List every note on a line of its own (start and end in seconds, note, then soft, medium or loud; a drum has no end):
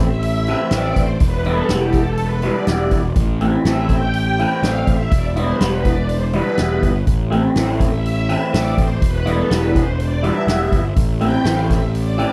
0.00 0.54 A1 medium
0.00 0.75 E5 loud
0.23 open hi-hat medium
0.47 0.72 E3 medium
0.47 0.72 A3 medium
0.47 0.72 C4 medium
0.47 0.73 E4 medium
0.47 open hi-hat medium
0.71 0.92 A1 medium
0.71 1.05 E3 medium
0.71 1.05 A3 medium
0.71 1.05 C4 medium
0.71 1.05 E4 medium
0.71 0.98 D5 loud
0.71 snare loud
0.71 open hi-hat medium
0.96 1.16 A1 medium
0.96 1.10 C5 medium
0.96 kick medium
0.96 open hi-hat medium
1.20 1.61 E1 medium
1.20 1.48 B4 loud
1.20 kick loud
1.20 open hi-hat medium
1.45 1.69 E3 medium
1.45 1.69 G3 medium
1.45 1.70 B3 medium
1.45 1.70 E4 medium
1.45 1.72 A4 loud
1.45 open hi-hat soft
1.69 2.49 E1 medium
1.69 2.02 E3 medium
1.69 2.02 G3 medium
1.69 2.03 B3 medium
1.69 2.03 E4 medium
1.69 snare loud
1.69 open hi-hat medium
1.73 1.97 G4 medium
1.92 2.21 A4 loud
1.92 kick medium
1.92 open hi-hat soft
2.17 2.45 B4 medium
2.17 open hi-hat medium
2.42 2.68 E3 medium
2.42 2.67 G3 medium
2.42 2.68 B3 medium
2.42 2.68 E4 medium
2.42 2.90 D5 loud
2.42 open hi-hat soft
2.67 2.88 E1 medium
2.67 3.00 E3 medium
2.67 3.00 G3 medium
2.67 3.00 B3 medium
2.67 3.01 E4 medium
2.67 snare loud
2.67 open hi-hat medium
2.91 3.12 E1 medium
2.91 kick medium
2.91 open hi-hat soft
3.16 3.56 A1 medium
3.16 kick loud
3.16 open hi-hat medium
3.41 3.65 E3 medium
3.41 3.65 A3 medium
3.41 3.66 C4 medium
3.41 3.66 E4 medium
3.41 open hi-hat medium
3.65 4.44 A1 medium
3.65 3.98 E3 medium
3.65 3.98 A3 medium
3.65 3.98 C4 medium
3.65 3.98 E4 medium
3.65 3.88 E5 loud
3.65 snare loud
3.65 open hi-hat medium
3.89 4.67 G5 loud
3.89 kick medium
3.89 open hi-hat medium
4.14 open hi-hat medium
4.39 4.62 E3 medium
4.39 4.62 A3 medium
4.39 4.62 C4 medium
4.39 4.63 E4 medium
4.39 open hi-hat medium
4.63 4.83 A1 medium
4.63 4.95 E3 medium
4.63 4.95 A3 medium
4.63 4.95 C4 medium
4.63 4.96 E4 medium
4.63 4.89 F5 loud
4.63 snare loud
4.63 open hi-hat medium
4.87 5.07 A1 medium
4.87 5.13 E5 medium
4.87 kick medium
4.87 open hi-hat medium
5.11 5.51 E1 medium
5.11 5.24 D5 medium
5.11 kick loud
5.11 open hi-hat medium
5.36 5.59 E3 medium
5.36 5.60 G3 medium
5.36 5.60 B3 medium
5.36 5.60 E4 medium
5.36 5.63 C5 medium
5.36 open hi-hat medium
5.60 6.40 E1 medium
5.60 5.93 E3 medium
5.60 5.93 G3 medium
5.60 5.93 B3 medium
5.60 5.93 E4 medium
5.60 snare loud
5.60 open hi-hat medium
5.66 5.89 B4 medium
5.85 6.11 D5 medium
5.85 kick medium
5.85 open hi-hat medium
6.09 6.23 C5 medium
6.09 open hi-hat medium
6.33 6.57 E3 medium
6.33 6.58 G3 medium
6.33 6.58 B3 medium
6.33 6.58 E4 medium
6.33 6.80 B4 medium
6.33 open hi-hat soft
6.57 6.79 E1 medium
6.57 6.90 E3 medium
6.57 6.91 G3 medium
6.57 6.91 B3 medium
6.57 6.91 E4 medium
6.57 snare loud
6.57 open hi-hat medium
6.83 7.03 G1 medium
6.83 kick medium
6.83 open hi-hat soft
7.07 7.47 A1 medium
7.07 kick loud
7.07 open hi-hat medium
7.31 7.55 E3 medium
7.31 7.56 A3 medium
7.31 7.56 C4 medium
7.31 7.56 E4 medium
7.31 open hi-hat soft
7.56 8.35 A1 medium
7.56 7.88 E3 medium
7.56 7.89 A3 medium
7.56 7.89 C4 medium
7.56 7.88 E4 medium
7.56 7.70 C5 loud
7.56 snare loud
7.56 open hi-hat medium
7.80 kick medium
7.80 open hi-hat medium
7.85 8.58 E5 loud
8.06 open hi-hat medium
8.29 8.52 E3 medium
8.29 8.52 A3 medium
8.29 8.53 C4 medium
8.29 8.53 E4 medium
8.29 open hi-hat medium
8.53 8.74 A1 medium
8.53 8.85 E3 medium
8.53 8.85 A3 medium
8.53 8.86 C4 medium
8.53 8.86 E4 medium
8.53 8.79 D5 loud
8.53 snare loud
8.53 open hi-hat medium
8.78 8.98 A1 medium
8.78 9.02 C5 medium
8.78 kick medium
8.78 open hi-hat medium
9.02 9.41 E1 medium
9.02 9.26 B4 medium
9.02 kick loud
9.02 open hi-hat medium
9.26 9.50 E3 medium
9.26 9.49 G3 medium
9.26 9.50 B3 medium
9.26 9.51 E4 medium
9.26 9.52 A4 medium
9.26 open hi-hat medium
9.50 10.30 E1 medium
9.50 9.83 E3 medium
9.50 9.83 G3 medium
9.50 9.83 B3 medium
9.50 9.83 E4 medium
9.50 9.76 B4 medium
9.50 snare loud
9.50 open hi-hat medium
9.74 10.00 C5 loud
9.74 kick medium
9.74 open hi-hat medium
10.00 10.23 D5 medium
10.00 open hi-hat medium
10.23 10.47 E3 medium
10.23 10.47 G3 medium
10.23 10.48 B3 medium
10.23 10.48 E4 medium
10.23 10.70 E5 medium
10.23 open hi-hat medium
10.47 10.68 E1 medium
10.47 10.80 E3 medium
10.47 10.80 G3 medium
10.47 10.81 B3 medium
10.47 10.81 E4 medium
10.47 snare loud
10.47 open hi-hat medium
10.72 10.92 G1 medium
10.72 kick medium
10.72 open hi-hat soft
10.96 11.37 A1 medium
10.96 kick loud
10.96 open hi-hat medium
11.21 11.43 E3 medium
11.21 11.44 A3 medium
11.21 11.44 C4 medium
11.21 11.45 E4 medium
11.21 11.47 G5 loud
11.21 open hi-hat soft
11.44 12.24 A1 medium
11.44 11.77 E3 medium
11.44 11.78 A3 medium
11.44 11.78 C4 medium
11.44 11.78 E4 medium
11.44 11.59 F5 medium
11.44 snare loud
11.44 open hi-hat medium
11.70 11.82 E5 medium
11.70 kick medium
11.70 snare soft
11.70 open hi-hat medium
11.95 12.33 D5 loud
11.95 open hi-hat medium
12.18 12.33 E3 medium
12.18 12.33 A3 medium
12.18 12.33 C4 medium
12.18 12.33 E4 medium
12.18 open hi-hat medium